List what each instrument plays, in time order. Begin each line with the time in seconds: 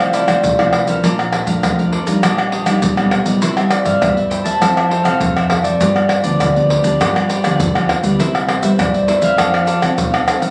Already playing: upright bass C2, nylon-string guitar C3 F3 A3, harp C5 D5 F5
0.00 cavaquinho A4 C5 F5
0.13 cavaquinho E4 A4 C5 F5, harp D5, pandeiro, maracas
0.27 upright bass C2, nylon-string guitar F3 A3 E4, cavaquinho A4 C5 F5, harp C5, pandeiro, tamborim, maracas, surdo
0.43 upright bass C2, nylon-string guitar C3, pandeiro, maracas, surdo
0.58 nylon-string guitar F3 A3 E4, cavaquinho A4 C5 F5, pandeiro, tamborim, maracas
0.73 harp B4, muted cavaquinho stroke, pandeiro, tamborim
0.87 nylon-string guitar F3 D4, cavaquinho A4 C5 F5, harp A#4, pandeiro, maracas, surdo
1.03 upright bass A#1, nylon-string guitar A#2, cavaquinho A4 D5 F5 A#5, pandeiro, maracas, surdo
1.19 cavaquinho D5 F5 A#5, pandeiro, tamborim, maracas
1.32 harp A4, muted cavaquinho stroke, pandeiro, tamborim, surdo
1.46 upright bass F2, nylon-string guitar F3 A3 D4, harp A#4, cavaquinho D5 F5 A#5, pandeiro, maracas, surdo
1.63 upright bass F2, nylon-string guitar F2, pandeiro, tamborim, maracas, surdo
1.78 nylon-string guitar F3 A3 D4, cavaquinho D5 F5 A#5, pandeiro, maracas
1.92 cavaquinho A4 D5 F5 A#5, pandeiro
2.06 upright bass F2, nylon-string guitar G3 D4 D#4, cavaquinho D5 F5 A#5, pandeiro, maracas, surdo
2.22 upright bass A#1, nylon-string guitar A#2, cavaquinho D4 G4 D5 D#5, pandeiro, tamborim, maracas, surdo
2.38 cavaquinho G4 D5 D#5, pandeiro, tamborim, maracas
2.52 cavaquinho D4 G4 D5 D#5, pandeiro
2.66 upright bass A#1, nylon-string guitar G3 D4 D#4, cavaquinho G4 D5 D#5, pandeiro, tamborim, maracas, surdo
2.82 upright bass B1, nylon-string guitar A#2, pandeiro, maracas, surdo
2.97 nylon-string guitar G3 D4 D#4, cavaquinho G4 D5 D#5, pandeiro, tamborim, maracas
3.11 muted cavaquinho stroke, pandeiro, tamborim
3.25 nylon-string guitar G3 B3 E4, cavaquinho G4 D5 D#5, pandeiro, maracas, surdo
3.42 upright bass C2, nylon-string guitar C3, cavaquinho E4 B4 C5 E5, pandeiro, maracas, surdo
3.57 nylon-string guitar G3 B3 E4, cavaquinho B4 C5 E5, pandeiro, tamborim, maracas
3.71 harp D5, muted cavaquinho stroke, pandeiro, tamborim, maracas
3.85 upright bass G2, cavaquinho B4 C5 E5, harp F5, pandeiro, maracas, surdo
4.01 upright bass G2, nylon-string guitar G2 G3 B3 E4, harp E5, pandeiro, tamborim, maracas, surdo
4.17 cavaquinho B4 C5 E5, pandeiro, maracas
4.30 cavaquinho E4 B4 C5 E5, harp G5, pandeiro, maracas
4.44 upright bass E2, cavaquinho B4 C5 E5, harp A5, pandeiro, maracas, surdo
4.61 upright bass F2, nylon-string guitar F3 C4 E4 A4, cavaquinho F4 A4 C5 E5, pandeiro, tamborim, maracas, surdo
4.77 cavaquinho A4 C5 E5, pandeiro, tamborim, maracas
4.89 cavaquinho F4 A4 C5 E5, harp G5, pandeiro
5.03 upright bass C2, nylon-string guitar C4 A4, cavaquinho A4 C5 E5, harp F5, pandeiro, tamborim, maracas, surdo
5.21 upright bass F2, nylon-string guitar C3, pandeiro, maracas, surdo
5.36 cavaquinho A4 C5 E5, pandeiro, tamborim, maracas
5.49 nylon-string guitar C4 E4 A4, harp E5, muted cavaquinho stroke, pandeiro, tamborim
5.63 cavaquinho A4 C5 E5, harp D5, pandeiro, maracas, surdo
5.80 upright bass G2, nylon-string guitar G2 F3 B3 D4, cavaquinho F4 G4 B4 D5, pandeiro, maracas, surdo
5.96 cavaquinho G4 B4 D5, pandeiro, tamborim, maracas
6.08 harp C5, muted cavaquinho stroke, pandeiro, tamborim, surdo
6.23 upright bass D2, nylon-string guitar F3 B3 D4, cavaquinho G4 B4 D5, harp D5, pandeiro, maracas, surdo
6.40 upright bass D2, nylon-string guitar D3, pandeiro, tamborim, maracas, surdo
6.55 nylon-string guitar F3 B3 D4, cavaquinho G4 B4 D5, pandeiro, maracas
6.70 cavaquinho F4 G4 B4 D5, pandeiro
6.83 upright bass D2, nylon-string guitar F3 B3 D4, cavaquinho G4 B4 D5, pandeiro, maracas, surdo
7.00 nylon-string guitar G2 F3 B3 D4, upright bass G2, cavaquinho F4 G4 B4 D5, pandeiro, tamborim, maracas, surdo
7.16 cavaquinho G4 B4 D5, pandeiro, tamborim, maracas
7.29 cavaquinho F4 G4 B4 D5, pandeiro, maracas
7.44 upright bass D2, nylon-string guitar F3 B3 D4, cavaquinho G4 B4 D5, pandeiro, tamborim, maracas, surdo
7.60 upright bass G2, nylon-string guitar D3, pandeiro, maracas, surdo
7.75 upright bass F2, nylon-string guitar F3 B3 D4, cavaquinho G4 B4 D5, pandeiro, tamborim, maracas
7.89 upright bass E2, muted cavaquinho stroke, pandeiro, tamborim
8.03 upright bass D2, nylon-string guitar G3 B3 E4, cavaquinho G4 B4 D5, pandeiro, maracas, surdo
8.19 upright bass C2, nylon-string guitar C3, cavaquinho E4 B4 C5 E5, pandeiro, maracas, surdo
8.34 cavaquinho B4 C5 E5, pandeiro, tamborim, maracas
8.49 harp C5, muted cavaquinho stroke, pandeiro, tamborim, surdo
8.62 upright bass G2, nylon-string guitar G3 B3 E4, cavaquinho B4 C5 E5, harp E5, pandeiro, maracas, surdo
8.79 upright bass G2, nylon-string guitar G2, harp D5, pandeiro, tamborim, maracas, surdo
8.94 cavaquinho B4 C5 E5, pandeiro, maracas
9.07 nylon-string guitar G3 B3 E4, cavaquinho E4 B4 C5 E5, harp E5, pandeiro, maracas
9.21 upright bass C2, cavaquinho B4 C5 E5, harp F5, pandeiro, maracas, surdo
9.37 upright bass F2, nylon-string guitar F3 C4 D4 A4, cavaquinho D4 A4 D5 F5, pandeiro, tamborim, maracas, surdo
9.52 cavaquinho A4 D5 F5, pandeiro, tamborim, maracas
9.65 cavaquinho D4 A4 D5 F5, pandeiro, maracas
9.80 upright bass C2, nylon-string guitar C4 D4, cavaquinho A4 D5 F5, pandeiro, tamborim, maracas, surdo
9.84 nylon-string guitar A4
9.98 upright bass B1, pandeiro, maracas, surdo
10.12 cavaquinho A4 D5 F5, pandeiro, tamborim, maracas
10.26 nylon-string guitar C4 D4 A4, muted cavaquinho stroke, pandeiro, tamborim, maracas
10.40 cavaquinho A4 D5 F5, pandeiro, maracas, surdo